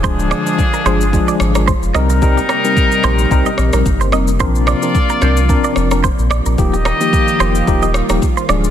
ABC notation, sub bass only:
X:1
M:4/4
L:1/16
Q:"Swing 16ths" 1/4=110
K:Eb
V:1 name="Sub bass" clef=bass
D,,,3 z3 G,,,3 z A,,,3 F,,, C,,2- | C,,2 z4 B,,,2 C,, z B,,, B,,, G,,,2 F,,,2 | B,,,3 z3 C,,3 z F,,,3 B,,,2 B,,, | E,,,3 z3 F,,,2 E,,,3 E,,, z2 D,,,2 |]